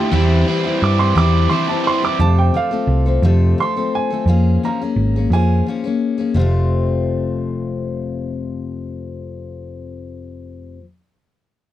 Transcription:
0.00 0.11 D3 medium
0.00 0.12 A3 medium
0.00 0.12 A3 soft
0.00 0.11 D4 medium
0.00 0.12 E4 soft
0.00 0.11 F4 medium
0.00 0.13 F4 soft
0.00 0.46 G4 medium
0.11 0.43 E2 medium
0.11 0.45 E3 medium
0.11 0.80 E3 medium
0.11 0.50 G3 medium
0.11 0.46 C4 medium
0.11 0.48 C4 medium
0.11 0.47 E4 medium
0.11 0.46 E4 medium
0.11 0.48 G4 medium
0.46 0.64 E3 medium
0.46 0.65 C4 medium
0.46 0.82 C4 medium
0.46 0.83 E4 medium
0.46 0.65 E4 medium
0.46 0.63 G4 medium
0.51 0.81 G3 medium
0.64 0.99 C4 soft
0.64 0.98 E4 soft
0.64 0.96 G4 medium
0.81 1.12 G2 medium
0.81 1.48 E3 medium
0.81 1.17 G3 medium
0.81 1.16 C4 medium
0.81 1.15 E4 medium
0.81 0.99 D6 medium
0.97 1.15 C4 soft
0.97 1.16 E4 soft
0.97 1.16 G4 soft
0.97 1.15 C6 medium
1.15 1.46 E2 medium
1.15 1.48 E3 medium
1.15 1.50 G3 medium
1.15 1.49 C4 medium
1.15 1.50 C4 medium
1.15 1.52 E4 medium
1.15 1.50 E4 medium
1.15 1.51 G4 medium
1.15 1.33 D6 medium
1.49 1.67 E3 medium
1.49 2.17 E3 medium
1.49 1.87 G3 medium
1.49 1.68 C4 medium
1.49 1.85 C4 medium
1.49 1.68 E4 medium
1.49 1.83 E4 medium
1.49 1.66 G4 medium
1.49 1.66 C6 medium
1.67 2.04 C4 soft
1.67 2.02 E4 soft
1.67 2.01 G4 medium
1.67 1.84 A5 medium
1.84 2.19 G3 medium
1.84 2.18 C4 medium
1.84 2.17 E4 medium
1.84 2.02 C6 medium
2.02 2.19 C4 soft
2.02 2.20 E4 soft
2.02 2.20 G4 soft
2.02 2.20 D6 medium
2.19 2.54 F2 medium
2.19 2.49 F2 medium
2.19 2.55 C3 medium
2.19 2.53 F3 medium
2.19 2.54 A3 medium
2.19 2.55 C4 medium
2.19 2.55 A4 medium
2.19 2.36 A5 medium
2.39 2.54 G5 medium
2.54 2.72 F3 medium
2.54 2.72 A3 medium
2.54 2.71 C4 medium
2.54 2.70 A4 medium
2.54 3.23 F5 medium
2.71 3.07 F3 soft
2.71 3.07 A3 soft
2.71 3.06 C4 medium
2.71 3.05 A4 medium
2.87 3.18 C2 medium
3.06 3.23 F3 soft
3.06 3.24 A3 soft
3.06 3.24 C4 soft
3.06 3.23 A4 soft
3.22 3.53 F2 medium
3.22 3.58 F2 medium
3.22 3.59 C3 medium
3.22 3.57 F3 medium
3.22 3.59 A3 medium
3.22 3.59 C4 medium
3.22 3.59 A4 medium
3.58 3.75 F3 soft
3.58 3.77 A3 medium
3.58 3.76 C4 medium
3.58 3.93 C6 medium
3.62 3.75 A4 medium
3.76 4.12 F3 soft
3.76 4.12 A3 soft
3.76 4.11 C4 soft
3.76 4.09 A4 medium
3.95 4.61 G#5 medium
4.10 4.26 F3 soft
4.10 4.28 A3 soft
4.10 4.29 C4 soft
4.10 4.28 A4 soft
4.26 4.56 F2 medium
4.26 4.62 F3 medium
4.26 4.63 A#3 medium
4.26 4.63 C#4 medium
4.26 4.63 G#4 medium
4.63 4.80 F3 medium
4.63 4.81 A#3 medium
4.63 4.81 C#4 medium
4.63 4.80 G#4 medium
4.63 5.31 A#5 medium
4.81 5.16 A#3 soft
4.81 5.16 C#4 soft
4.81 5.15 G#4 soft
4.96 5.26 G#1 medium
5.16 5.32 A#3 soft
5.16 5.32 C#4 soft
5.16 5.32 G#4 soft
5.30 5.61 F2 medium
5.30 5.65 F3 medium
5.30 5.67 A#3 medium
5.30 5.67 C#4 medium
5.30 5.67 G#4 medium
5.30 5.66 G#5 medium
5.67 5.84 F3 soft
5.67 5.85 A#3 soft
5.67 5.84 C#4 medium
5.67 5.83 G#4 medium
5.84 6.19 A#3 soft
5.84 6.18 C#4 soft
5.84 6.17 G#4 medium
6.18 6.37 A#3 soft
6.18 6.36 C#4 soft
6.18 6.35 G#4 medium
6.34 10.74 F1 medium
6.34 10.78 F2 medium
6.34 10.79 C3 medium
6.34 10.81 F3 medium
6.39 10.83 A3 medium
6.39 10.84 C4 medium
6.39 10.85 F4 medium

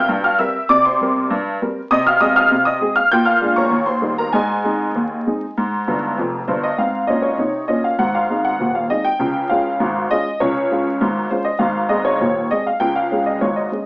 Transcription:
0.00 0.12 C3 medium
0.00 0.12 G3 soft
0.00 0.12 C4 soft
0.00 0.11 A#4 medium
0.00 0.11 E5 medium
0.00 0.12 F5 medium
0.00 0.23 G5 medium
0.00 0.11 C6 medium
0.00 0.11 E6 medium
0.00 0.12 F6 medium
0.00 0.24 G6 loud
0.09 0.35 G2 medium
0.24 0.39 F5 medium
0.24 0.39 F6 medium
0.39 0.56 G3 medium
0.39 0.56 C4 soft
0.39 0.57 A#4 medium
0.39 0.68 E5 medium
0.39 0.69 E6 medium
0.69 0.95 C3 medium
0.69 0.84 D5 medium
0.69 0.84 D6 loud
0.85 1.00 C5 medium
0.85 1.00 C6 medium
1.01 1.17 G3 medium
1.01 1.18 C4 soft
1.01 1.18 A#4 medium
1.30 1.56 G2 medium
1.62 1.78 G3 medium
1.62 1.78 C4 medium
1.62 1.78 A#4 medium
1.91 2.17 C3 medium
1.91 2.05 D#5 medium
1.91 2.06 D#6 loud
2.06 2.21 F5 medium
2.06 2.21 F6 loud
2.20 2.37 G#3 soft
2.20 2.38 C4 medium
2.20 2.38 G#4 medium
2.20 2.35 D#5 medium
2.20 2.36 D#6 loud
2.36 2.64 F5 medium
2.36 2.66 F6 loud
2.52 2.77 C3 medium
2.65 2.94 D#5 medium
2.65 2.96 D#6 medium
2.81 2.98 G#3 soft
2.81 2.98 C4 soft
2.81 2.98 G#4 medium
2.96 3.10 F5 medium
2.96 3.11 F6 medium
3.12 3.38 A#2 medium
3.12 3.26 G5 medium
3.12 3.27 G6 loud
3.25 3.55 F5 medium
3.25 3.56 F6 medium
3.42 3.58 G#3 soft
3.42 3.58 D4 soft
3.42 3.59 F4 medium
3.56 3.86 C#5 medium
3.56 3.86 A#5 medium
3.56 3.87 C#6 medium
3.71 3.97 D#2 medium
3.86 4.15 C5 medium
3.86 4.17 C6 medium
4.02 4.19 G3 soft
4.02 4.19 A#3 soft
4.02 4.19 D#4 soft
4.18 4.33 A#4 medium
4.18 4.33 A#5 medium
4.33 4.59 G#2 medium
4.33 6.44 G#4 medium
4.33 6.44 D#5 medium
4.33 6.47 G#5 medium
4.64 4.81 G#3 soft
4.64 4.81 C4 soft
4.64 4.82 D#4 soft
4.95 5.21 D#2 medium
5.27 5.43 G#3 soft
5.27 5.43 C4 soft
5.27 5.44 D#4 soft
5.58 5.83 G#2 medium
5.88 6.10 G1 medium
5.88 6.10 G2 medium
6.18 6.41 F1 medium
6.18 6.40 F2 medium
6.48 6.71 G1 medium
6.48 6.71 G2 medium
6.48 6.63 C5 medium
6.64 6.78 D#5 medium
6.78 7.02 G#2 medium
6.78 7.03 C4 medium
6.78 7.08 F5 medium
7.07 7.32 A#2 medium
7.07 7.33 C#4 medium
7.07 7.23 D#5 medium
7.22 7.68 C#5 medium
7.38 7.62 C3 medium
7.38 7.63 D#4 medium
7.68 7.93 A#2 medium
7.68 7.94 C#4 medium
7.68 7.83 D#5 medium
7.84 7.99 F5 medium
7.99 8.25 G#1 medium
7.99 8.24 G#2 medium
7.99 8.14 F#5 medium
8.15 8.45 F5 medium
8.30 8.46 G#3 soft
8.30 8.47 C4 soft
8.30 8.47 D#4 soft
8.45 8.75 F#5 medium
8.60 8.85 D#1 medium
8.60 8.86 D#2 medium
8.75 8.90 F5 medium
8.90 9.06 G#3 soft
8.90 9.07 C4 soft
8.90 9.07 D#4 soft
8.90 9.05 D#5 medium
9.04 9.50 G5 medium
9.19 9.45 C#2 medium
9.19 9.45 C#3 medium
9.49 9.67 G#3 soft
9.49 9.67 C#4 soft
9.49 9.67 F4 medium
9.49 10.10 F5 medium
9.80 10.06 G#1 medium
9.80 10.06 G#2 medium
10.11 10.28 G#3 medium
10.11 10.28 C#4 soft
10.11 10.28 F4 medium
10.11 10.41 D#5 medium
10.40 10.66 C#2 medium
10.40 10.66 C#3 medium
10.40 11.01 C#5 medium
10.71 10.87 G#3 soft
10.71 10.88 C#4 soft
10.71 10.88 F4 medium
11.01 11.26 G#1 medium
11.01 11.26 G#2 medium
11.30 11.47 G#3 soft
11.30 11.48 C#4 soft
11.30 11.48 F4 medium
11.30 11.46 C5 medium
11.45 11.60 D#5 medium
11.59 11.86 G#1 medium
11.59 11.86 G#2 medium
11.59 11.90 F5 medium
11.89 12.06 G#3 soft
11.89 12.07 C4 soft
11.89 12.07 G#4 soft
11.89 12.05 D#5 medium
12.05 12.51 C#5 medium
12.21 12.47 D#1 medium
12.21 12.47 D#2 medium
12.51 12.68 G#3 soft
12.51 12.68 C4 soft
12.51 12.68 G#4 soft
12.51 12.66 D#5 medium
12.67 12.82 F5 medium
12.80 13.06 C#2 medium
12.80 13.07 C#3 medium
12.80 12.96 G5 medium
12.95 13.26 F5 medium
13.11 13.28 G#3 soft
13.11 13.28 C#4 soft
13.11 13.29 G#4 soft
13.26 13.42 D#5 medium
13.41 13.68 G#1 medium
13.41 13.68 G#2 medium
13.41 13.57 C#5 medium
13.56 13.86 D#5 medium
13.72 13.86 G#3 soft
13.72 13.86 C#4 soft
13.72 13.86 G#4 soft

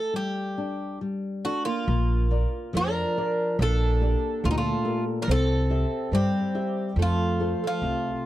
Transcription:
0.00 0.14 A1 medium
0.00 0.13 A3 medium
0.00 0.16 A4 medium
0.14 1.01 G1 medium
0.14 1.00 G3 medium
0.14 0.98 G4 medium
0.58 1.00 D4 soft
1.01 1.57 D2 medium
1.01 1.43 G3 soft
1.45 1.65 A3 soft
1.45 1.86 D4 soft
1.45 1.65 F#4 medium
1.65 2.70 A#3 medium
1.65 2.76 F4 medium
1.88 2.44 A#1 loud
1.88 2.30 A#3 medium
2.31 3.00 F4 soft
2.31 3.00 A#4 soft
2.31 3.00 D5 soft
2.73 3.02 F2 medium
2.73 3.56 F3 medium
2.73 3.56 D4 medium
2.73 3.57 A#4 medium
3.17 3.51 F4 soft
3.17 3.52 A#4 soft
3.17 3.52 D5 medium
3.59 4.14 A#1 loud
3.59 4.41 A#3 medium
3.59 4.40 D4 medium
3.59 4.48 A4 loud
4.01 4.69 G4 soft
4.01 4.69 A4 soft
4.01 4.69 D5 medium
4.44 4.71 D2 medium
4.44 5.26 A#2 medium
4.44 4.50 A3 medium
4.44 4.50 F4 medium
4.50 4.57 G3 medium
4.50 4.57 D#4 medium
4.58 5.04 A3 medium
4.58 5.03 F4 medium
4.85 5.19 G4 soft
4.85 5.19 A4 soft
4.85 5.19 A#4 medium
5.22 5.28 D4 medium
5.22 5.29 A#4 medium
5.28 5.83 C2 loud
5.28 6.10 C4 medium
5.28 6.09 C4 medium
5.28 6.14 A4 loud
5.70 6.38 G4 soft
5.70 6.38 C5 soft
5.70 6.39 E5 medium
6.12 6.40 G2 medium
6.12 6.96 G3 medium
6.12 6.94 C4 medium
6.12 7.02 G4 medium
6.55 6.89 G4 soft
6.55 6.89 C5 soft
6.55 6.89 E5 medium
6.96 7.52 F2 loud
6.96 7.81 F3 medium
6.96 7.59 A3 medium
7.02 7.66 F4 medium
7.40 8.09 F4 soft
7.40 8.09 A4 soft
7.40 8.09 C5 soft
7.64 8.23 A3 medium
7.64 8.25 F4 medium
7.82 8.10 C2 medium
7.82 8.26 C3 medium

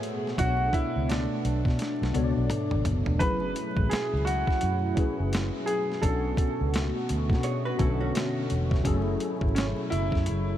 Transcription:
0.00 0.25 A2 medium
0.00 5.99 B2 medium
0.00 0.26 A3 medium
0.00 5.99 A3 medium
0.00 0.26 B3 medium
0.00 3.16 B3 medium
0.00 0.27 G#4 medium
0.00 0.35 G#4 medium
0.00 0.39 C5 medium
0.00 0.31 C#5 medium
0.00 closed hi-hat medium
0.27 snare soft
0.36 0.69 B1 loud
0.36 1.66 B2 medium
0.36 1.66 B3 medium
0.36 3.17 D4 medium
0.36 1.67 D4 medium
0.36 0.74 F#4 loud
0.36 1.67 A4 medium
0.36 kick loud
0.36 closed hi-hat medium
0.40 1.68 C#5 medium
0.73 1.10 E4 loud
0.73 kick loud
0.73 closed hi-hat medium
0.96 1.26 C#2 medium
1.09 2.81 D4 medium
1.09 snare loud
1.09 closed hi-hat medium
1.45 1.63 B1 loud
1.45 closed hi-hat medium
1.65 1.77 B2 loud
1.65 kick medium
1.65 snare soft
1.79 snare medium
1.79 closed hi-hat medium
2.02 2.13 B1 medium
2.02 snare medium
2.12 2.33 C#2 loud
2.12 3.07 B2 medium
2.12 3.08 B3 medium
2.12 3.09 D4 medium
2.12 3.09 A4 medium
2.12 closed hi-hat medium
2.12 high tom medium
2.17 2.24 C#5 medium
2.24 3.13 D5 medium
2.37 2.48 B1 medium
2.50 closed hi-hat medium
2.50 mid tom medium
2.71 2.84 G#1 medium
2.71 mid tom medium
2.85 3.04 F#1 medium
2.85 closed hi-hat medium
2.85 floor tom medium
3.06 3.21 E1 medium
3.06 floor tom medium
3.18 3.51 F#1 loud
3.18 4.48 F#3 medium
3.18 6.00 F#3 medium
3.18 4.49 C#4 medium
3.18 6.00 E4 medium
3.18 4.49 E4 medium
3.18 4.50 G#4 medium
3.18 3.92 B4 medium
3.18 kick loud
3.18 closed hi-hat medium
3.23 4.51 A3 medium
3.56 closed hi-hat medium
3.77 3.89 A1 medium
3.77 kick medium
3.90 4.23 G#4 medium
3.90 muted fingered electric bass stroke soft
3.90 snare loud
3.90 closed hi-hat medium
4.13 4.43 C#2 medium
4.25 5.71 F#4 medium
4.25 closed hi-hat medium
4.47 kick medium
4.47 snare soft
4.61 4.92 F#2 medium
4.61 closed hi-hat medium
4.94 5.90 F#3 medium
4.94 5.90 C#4 medium
4.94 5.91 E4 medium
4.94 5.91 G#4 medium
4.94 kick loud
4.94 closed hi-hat medium
4.99 5.92 B4 medium
5.20 5.49 F#1 medium
5.33 snare loud
5.33 closed hi-hat medium
5.66 6.03 G#4 medium
5.66 closed hi-hat medium
5.92 snare soft
6.00 6.33 B1 loud
6.00 7.30 B2 medium
6.00 10.58 B2 medium
6.00 10.58 A3 medium
6.00 7.31 B3 medium
6.00 8.82 B3 medium
6.00 7.31 C#4 medium
6.00 7.32 D4 medium
6.00 8.82 F#4 medium
6.00 6.69 A4 medium
6.00 kick loud
6.00 closed hi-hat medium
6.05 7.32 A4 medium
6.37 kick loud
6.37 closed hi-hat medium
6.61 6.90 C#2 medium
6.74 snare loud
6.74 closed hi-hat medium
7.09 7.32 D2 medium
7.09 closed hi-hat medium
7.30 7.72 B2 loud
7.30 kick medium
7.30 snare soft
7.43 7.65 G#4 medium
7.43 7.64 C#5 medium
7.43 closed hi-hat medium
7.65 7.79 F#4 medium
7.65 7.78 B4 medium
7.77 8.10 B1 medium
7.77 8.72 B2 medium
7.77 8.74 D3 medium
7.77 8.73 B3 medium
7.77 8.73 C#4 medium
7.77 8.00 E4 medium
7.77 7.99 A4 medium
7.77 kick medium
7.77 closed hi-hat medium
7.81 8.74 A4 medium
8.00 8.81 C#4 medium
8.00 8.81 F#4 medium
8.15 snare loud
8.15 closed hi-hat medium
8.50 8.81 E1 medium
8.50 closed hi-hat medium
8.71 kick loud
8.71 snare soft
8.83 9.15 F#1 loud
8.83 10.13 F#3 medium
8.83 10.58 F#3 medium
8.83 10.13 C#4 medium
8.83 10.14 E4 medium
8.83 10.58 E4 medium
8.83 10.14 G#4 medium
8.83 kick loud
8.83 closed hi-hat medium
8.87 10.15 A4 medium
9.20 closed hi-hat medium
9.41 9.72 G#1 medium
9.41 kick medium
9.55 9.63 C#4 medium
9.55 snare loud
9.55 closed hi-hat medium
9.90 10.10 F#1 medium
9.90 10.58 E4 loud
9.90 closed hi-hat medium
10.12 10.29 F#2 loud
10.12 kick medium
10.12 snare soft
10.26 10.57 F#1 loud
10.26 closed hi-hat medium

